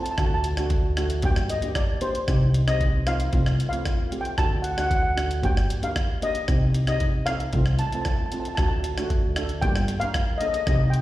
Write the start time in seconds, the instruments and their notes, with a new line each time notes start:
0.03 steel pan A5, closed hi-hat
0.11 steel pan A5
0.18 upright bass D2, steel pan A3 D4 F#4 A5, kick, cross-stick, closed hi-hat
0.25 steel pan A5
0.34 steel pan A5
0.44 closed hi-hat
0.57 steel pan A3 D4 F#4, cross-stick, closed hi-hat
0.70 kick, closed hi-hat
0.97 steel pan A3 D4 F#4, cross-stick, closed hi-hat
1.10 closed hi-hat
1.22 upright bass G1, steel pan A#3 D4 G4 G5, kick, closed hi-hat
1.36 cross-stick
1.50 steel pan D#5, closed hi-hat
1.62 steel pan A#3 D4 G4, closed hi-hat
1.75 steel pan D5, kick, cross-stick, closed hi-hat
2.01 steel pan A#3 D4 G4 C5, closed hi-hat
2.15 closed hi-hat
2.27 upright bass C2, steel pan C4 D#4 G4, kick, cross-stick, closed hi-hat
2.54 closed hi-hat
2.68 steel pan C4 D#4 G4 D#5, cross-stick, closed hi-hat
2.81 kick, closed hi-hat
3.07 steel pan C4 D#4 F4 F5, cross-stick, closed hi-hat
3.20 closed hi-hat
3.33 upright bass C2, steel pan A3 C4 F4, kick, closed hi-hat
3.46 cross-stick
3.60 closed hi-hat
3.69 steel pan A3 C4 F4 F5, closed hi-hat
3.86 kick, cross-stick, closed hi-hat
4.11 steel pan A3 C4 G4, closed hi-hat
4.21 steel pan G5
4.25 closed hi-hat
4.38 upright bass D2, steel pan A3 D4 F#4 A5, kick, cross-stick, closed hi-hat
4.62 steel pan F#5, closed hi-hat
4.71 steel pan F#5
4.77 steel pan A3 D4 F#4 F#5, cross-stick, closed hi-hat
4.87 steel pan F#5, kick
4.91 closed hi-hat
4.95 steel pan F#5
5.02 steel pan F#5
5.16 steel pan A3 D4 F#4, cross-stick, closed hi-hat
5.31 closed hi-hat
5.42 upright bass G1, steel pan A#3 D4 G4 G5, kick, closed hi-hat
5.57 cross-stick
5.70 closed hi-hat
5.82 steel pan A#3 D4 G4 F5, closed hi-hat
5.96 kick, cross-stick, closed hi-hat
6.22 steel pan A#3 D4 G4 D#5, closed hi-hat
6.35 closed hi-hat
6.48 upright bass C2, steel pan C4 D#4 G4, kick, cross-stick, closed hi-hat
6.74 closed hi-hat
6.87 steel pan C4 D#4 G4 D#5, cross-stick, closed hi-hat
7.00 kick, closed hi-hat
7.26 steel pan C4 D#4 A4 F5, cross-stick, closed hi-hat
7.40 closed hi-hat
7.53 upright bass C2, steel pan A3 C4 F4, kick, closed hi-hat
7.66 cross-stick
7.79 steel pan A5, closed hi-hat
7.87 steel pan A5
7.92 steel pan A3 C4 F4 A5, closed hi-hat
8.02 steel pan A5, cross-stick, closed hi-hat
8.06 kick
8.10 steel pan A5
8.16 steel pan A5
8.26 steel pan A5
8.32 steel pan A3 C4 F4 A5, closed hi-hat
8.40 steel pan A5
8.45 steel pan A5, closed hi-hat
8.55 upright bass D2, steel pan A3 D4 A5, kick, cross-stick, closed hi-hat
8.59 steel pan F#4 A5
8.68 steel pan A5
8.84 closed hi-hat
8.98 steel pan A3 D4 F#4, cross-stick, closed hi-hat
9.10 kick, closed hi-hat
9.36 steel pan A3 D4 A4, cross-stick, closed hi-hat
9.49 closed hi-hat
9.62 upright bass G1, steel pan A#3 D4 G4 G5, kick, closed hi-hat
9.76 cross-stick
9.88 closed hi-hat
10.00 steel pan A#3 D4 F5, closed hi-hat
10.04 steel pan A#4
10.14 kick, cross-stick, closed hi-hat
10.38 steel pan A#3 D4 D#5, closed hi-hat
10.43 steel pan A4 D#5
10.53 steel pan D#5, closed hi-hat
10.60 steel pan D#5
10.67 upright bass C2, steel pan C4 D#4 G4 D#5, kick, cross-stick, closed hi-hat
10.75 steel pan D#5
10.90 steel pan G5, closed hi-hat